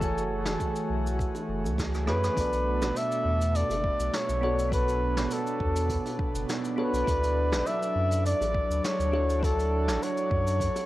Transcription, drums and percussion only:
0.01 kick, cabasa
0.18 cabasa
0.46 snare, high bongo, cabasa
0.60 kick, cabasa
0.76 cabasa
1.07 cabasa
1.19 kick, cabasa
1.35 high bongo, cabasa
1.64 high bongo, cabasa
1.78 kick, snare, cabasa
1.94 cross-stick, cabasa
2.07 cross-stick, high bongo
2.24 cross-stick, cabasa
2.37 kick, closed hi-hat, cabasa
2.53 closed hi-hat, cabasa
2.82 snare, high bongo, cabasa
2.96 closed hi-hat, cabasa
3.12 cabasa
3.41 closed hi-hat, cabasa
3.55 closed hi-hat, cabasa
3.70 closed hi-hat, high bongo, cabasa
3.84 kick
4.00 cabasa
4.13 snare, closed hi-hat, cabasa
4.29 cabasa
4.43 high bongo
4.58 closed hi-hat, cabasa
4.72 kick, closed hi-hat, cabasa
4.88 closed hi-hat, cabasa
5.17 snare, cabasa
5.31 closed hi-hat, cabasa
5.47 cabasa
5.60 kick
5.76 closed hi-hat, cabasa
5.89 kick, closed hi-hat, cabasa
6.06 closed hi-hat, high bongo, cabasa
6.19 kick
6.35 cabasa
6.49 snare, closed hi-hat, cabasa
6.65 cabasa
6.78 high bongo
6.94 closed hi-hat, cabasa
7.07 kick, closed hi-hat, cabasa
7.23 closed hi-hat, cabasa
7.52 snare, high bongo, cabasa
7.67 closed hi-hat, cabasa
7.83 cabasa
8.11 closed hi-hat, cabasa
8.26 closed hi-hat, cabasa
8.41 closed hi-hat, high bongo, cabasa
8.54 kick
8.71 cabasa
8.84 snare, closed hi-hat, cabasa
9.00 cabasa
9.13 high bongo
9.29 closed hi-hat, cabasa
9.43 kick, closed hi-hat, cabasa
9.59 closed hi-hat, cabasa
9.88 snare, cabasa
10.02 closed hi-hat, cabasa
10.17 cabasa
10.31 kick
10.47 closed hi-hat, cabasa
10.60 kick, closed hi-hat, cabasa
10.76 closed hi-hat, high bongo, cabasa

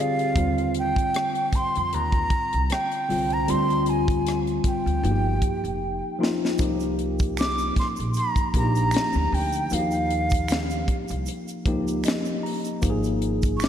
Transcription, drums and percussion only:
0.19 closed hi-hat
0.36 kick, closed hi-hat
0.58 closed hi-hat
0.74 closed hi-hat
0.96 kick, closed hi-hat
1.14 cross-stick, closed hi-hat
1.35 closed hi-hat
1.53 kick, cross-stick, closed hi-hat
1.75 closed hi-hat
1.93 closed hi-hat
2.12 kick, closed hi-hat
2.30 kick, closed hi-hat
2.53 closed hi-hat
2.70 cross-stick, closed hi-hat
2.92 closed hi-hat
3.10 cross-stick, open hi-hat
3.30 closed hi-hat
3.48 closed hi-hat
3.70 closed hi-hat
3.86 closed hi-hat
4.08 kick, closed hi-hat
4.26 cross-stick, closed hi-hat
4.47 closed hi-hat
4.64 kick, cross-stick, closed hi-hat
4.87 closed hi-hat
5.04 closed hi-hat
5.42 kick, closed hi-hat
5.65 closed hi-hat
6.23 snare
6.45 snare
6.58 kick, closed hi-hat, shaker
6.80 closed hi-hat, shaker
6.99 closed hi-hat
7.19 kick, closed hi-hat, shaker
7.37 finger snap, snare, closed hi-hat, shaker
7.58 closed hi-hat, shaker
7.76 kick, snare, closed hi-hat
7.96 closed hi-hat, shaker
8.14 closed hi-hat, shaker
8.36 kick, closed hi-hat, shaker
8.54 kick, closed hi-hat
8.75 closed hi-hat, shaker
8.91 finger snap, closed hi-hat, shaker
8.97 snare
9.13 shaker
9.34 open hi-hat
9.52 closed hi-hat, shaker
9.70 closed hi-hat, shaker
9.91 closed hi-hat, shaker
10.10 closed hi-hat
10.30 kick, shaker
10.34 closed hi-hat
10.48 finger snap, snare, closed hi-hat, shaker
10.70 closed hi-hat, shaker
10.88 kick, closed hi-hat
11.08 closed hi-hat, shaker
11.26 closed hi-hat, shaker
11.48 closed hi-hat, shaker
11.66 kick, closed hi-hat
11.88 closed hi-hat, shaker
12.04 finger snap, closed hi-hat, shaker
12.08 snare
12.25 shaker
12.46 open hi-hat
12.64 closed hi-hat, shaker
12.82 kick, closed hi-hat, shaker
13.03 closed hi-hat, shaker
13.22 closed hi-hat
13.42 kick, closed hi-hat, shaker
13.60 finger snap, snare, closed hi-hat, shaker

